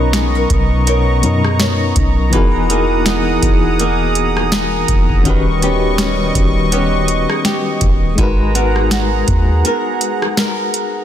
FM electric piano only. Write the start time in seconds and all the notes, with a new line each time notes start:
Already playing: B2 F#3 C#4 D#4 A#4
1.22 B2 F#3 C#4 D#4 A#4
2.30 E3 B3 D#4
2.34 F#4 G#4 A#4
5.23 D#3 C#4 F#4
5.28 G4 B4
8.15 G#3 D#4 F#4
8.21 A#4 B4